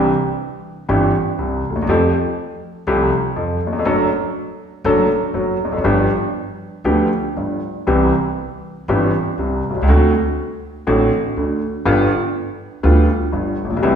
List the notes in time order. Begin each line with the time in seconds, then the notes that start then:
0.89 G1 G2 E3 C4 D4 G4
1.38 C2 C3
1.70 D2
1.76 D#2
1.81 E2
1.87 F2 F3 A3 C4 G4
2.87 C2 C3 F3 A3 C4 G4
3.36 F2 F3
3.67 D#2
3.73 E2
3.79 F2
3.85 F#1 F#2 F#3 A3 D4 A4
4.84 F#1 F#2 F#3 A3 D4 A4
5.34 F#1 F#2 F#3
5.65 E1 E2
5.72 F1 F2
5.77 F#1 F#2
5.84 G1 G2 F3 B3 D4 G4
6.84 D2 D3 F3 B3 D4 G4
7.37 G1 G2
7.87 C2 C3 E3 B3 C4 G4
8.88 G1 G2 E3 B3 C4 G4
9.38 C2 C3
9.70 B1
9.75 C2
9.81 C#2
9.88 D2 D3 A3 C4 F#4
10.87 A1 A2 D3 A3 C4 F#4
11.36 D2 D3
11.85 G1 G2 D3 G3 B3 F4
12.83 D2 D3 G3 B3 F4
13.32 G1 G2
13.64 A1
13.70 A#1
13.77 B1
13.82 C2 C3 G3 B3 E4